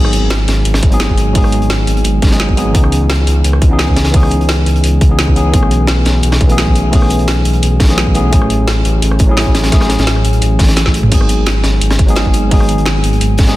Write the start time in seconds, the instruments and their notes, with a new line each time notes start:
Already playing: detuned saw bass G#1, tine electric piano F#3 G#3 B3 D#4 G#4
0.05 cross-stick
0.13 closed hi-hat
0.22 detuned saw bass G#1
0.30 snare, closed hi-hat
0.48 detuned saw bass G#1, snare, closed hi-hat
0.65 detuned saw bass G#1, closed hi-hat
0.74 cross-stick, snare, closed hi-hat
0.83 detuned saw bass G#1, kick, closed hi-hat
0.89 tine electric piano F#3 G#3 B3 D#4, closed hi-hat
0.94 tine electric piano G#4
1.00 snare, closed hi-hat
1.09 detuned saw bass G#1, kick
1.18 closed hi-hat
1.33 detuned saw bass G#1, tine electric piano F#3 G#3 B3 D#4, kick, closed hi-hat, open hi-hat
1.37 tine electric piano G#4
1.44 cross-stick
1.52 closed hi-hat
1.61 detuned saw bass G#1, closed hi-hat
1.70 snare, closed hi-hat
1.87 detuned saw bass G#1, closed hi-hat
1.97 closed hi-hat
2.04 detuned saw bass G#1, closed hi-hat
2.22 detuned saw bass G#1, kick, snare, closed hi-hat
2.27 tine electric piano F#3 G#3, snare, closed hi-hat
2.31 tine electric piano B3 D#4 G#4, snare, closed hi-hat
2.40 snare, closed hi-hat
2.49 detuned saw bass G#1, kick
2.56 tine electric piano F#3 G#3 B3 D#4 G#4, closed hi-hat
2.72 detuned saw bass C#2, tine electric piano E3 B3 C#4 D#4, kick, closed hi-hat
2.77 tine electric piano G#4
2.84 cross-stick
2.92 closed hi-hat
3.01 detuned saw bass C#2
3.10 snare, closed hi-hat
3.27 detuned saw bass C#2, closed hi-hat
3.44 detuned saw bass C#2, closed hi-hat
3.53 cross-stick
3.62 detuned saw bass C#2, kick, closed hi-hat
3.68 tine electric piano E3 B3 C#4 D#4
3.73 tine electric piano G#4
3.79 snare, closed hi-hat
3.88 detuned saw bass C#2, kick
3.96 snare, closed hi-hat
4.05 snare, closed hi-hat
4.12 detuned saw bass C#2, tine electric piano E3 B3 C#4 D#4, kick, closed hi-hat, open hi-hat
4.16 tine electric piano G#4
4.23 cross-stick
4.31 closed hi-hat
4.40 detuned saw bass C#2, closed hi-hat
4.49 snare, closed hi-hat
4.66 detuned saw bass C#2, closed hi-hat
4.76 closed hi-hat
4.84 detuned saw bass C#2, closed hi-hat
5.01 detuned saw bass C#2, kick, closed hi-hat
5.09 tine electric piano E3 B3 C#4 D#4 G#4
5.19 snare, closed hi-hat
5.28 detuned saw bass C#2, kick
5.35 tine electric piano E3 B3 C#4 D#4 G#4, closed hi-hat
5.51 detuned saw bass B1, tine electric piano E3 A3 B3 C#4, kick, closed hi-hat
5.56 tine electric piano G#4
5.63 cross-stick
5.71 closed hi-hat
5.80 detuned saw bass B1
5.87 snare, closed hi-hat
6.05 detuned saw bass B1, snare, closed hi-hat
6.23 detuned saw bass B1, closed hi-hat
6.32 cross-stick, snare, closed hi-hat
6.41 detuned saw bass B1, kick, closed hi-hat
6.47 tine electric piano E3 A3 B3 C#4, closed hi-hat
6.52 tine electric piano G#4
6.58 snare, closed hi-hat
6.67 detuned saw bass B1, kick
6.75 closed hi-hat
6.91 detuned saw bass B1, tine electric piano E3 A3 B3 C#4, kick, closed hi-hat, open hi-hat
6.95 tine electric piano G#4
7.02 cross-stick
7.10 closed hi-hat
7.19 detuned saw bass B1, closed hi-hat
7.28 snare, closed hi-hat
7.45 detuned saw bass B1, closed hi-hat
7.53 closed hi-hat
7.63 detuned saw bass B1, closed hi-hat
7.80 detuned saw bass B1, kick, snare, closed hi-hat
7.85 tine electric piano E3 A3, snare, closed hi-hat
7.89 tine electric piano B3 C#4 G#4, snare, closed hi-hat
7.97 snare, closed hi-hat
8.07 detuned saw bass B1, kick
8.14 tine electric piano E3 A3 B3 C#4 G#4, closed hi-hat
8.30 detuned saw bass A1, tine electric piano F#3 A3 C#4 E4, kick, closed hi-hat
8.35 tine electric piano G#4
8.42 cross-stick
8.50 closed hi-hat
8.59 detuned saw bass A1
8.68 snare, closed hi-hat
8.85 detuned saw bass A1, closed hi-hat
9.02 detuned saw bass A1, closed hi-hat
9.11 cross-stick
9.19 detuned saw bass A1, kick, closed hi-hat
9.27 tine electric piano F#3 A3 C#4 E4
9.31 tine electric piano G#4
9.37 snare, closed hi-hat
9.46 detuned saw bass A1, kick
9.55 snare, closed hi-hat
9.64 snare, closed hi-hat
9.70 detuned saw bass A1, tine electric piano F#3 A3 C#4 E4, kick, snare, closed hi-hat
9.75 tine electric piano G#4
9.81 cross-stick, snare, closed hi-hat
9.89 snare, closed hi-hat
9.98 detuned saw bass A1, snare, closed hi-hat
10.07 snare, closed hi-hat
10.16 cross-stick
10.25 detuned saw bass A1, closed hi-hat
10.33 closed hi-hat
10.42 detuned saw bass A1, closed hi-hat
10.59 detuned saw bass A1, kick, snare, closed hi-hat
10.63 snare, closed hi-hat
10.68 snare, closed hi-hat
10.76 snare, closed hi-hat
10.86 detuned saw bass A1, kick, snare
10.94 closed hi-hat
11.03 mid tom
11.09 detuned saw bass G#1, tine electric piano F#3 G#3 B3 D#4, kick, closed hi-hat, crash
11.14 tine electric piano G#4
11.21 cross-stick
11.29 closed hi-hat
11.38 detuned saw bass G#1
11.46 snare, closed hi-hat
11.64 detuned saw bass G#1, snare, closed hi-hat
11.81 detuned saw bass G#1, closed hi-hat
11.90 cross-stick, snare, closed hi-hat
11.99 detuned saw bass G#1, kick, closed hi-hat
12.06 tine electric piano F#3 G#3 B3 D#4, closed hi-hat
12.10 tine electric piano G#4
12.15 snare, closed hi-hat
12.26 detuned saw bass G#1, kick
12.33 closed hi-hat
12.49 detuned saw bass G#1, tine electric piano F#3 G#3 B3 D#4, kick, closed hi-hat, open hi-hat
12.54 tine electric piano G#4
12.60 cross-stick
12.69 closed hi-hat
12.78 detuned saw bass G#1, closed hi-hat
12.86 snare, closed hi-hat
13.04 detuned saw bass G#1, closed hi-hat
13.13 closed hi-hat
13.21 detuned saw bass G#1, closed hi-hat
13.38 detuned saw bass G#1, kick, snare, closed hi-hat
13.43 tine electric piano F#3 G#3, snare, closed hi-hat
13.47 tine electric piano B3 D#4 G#4, snare, closed hi-hat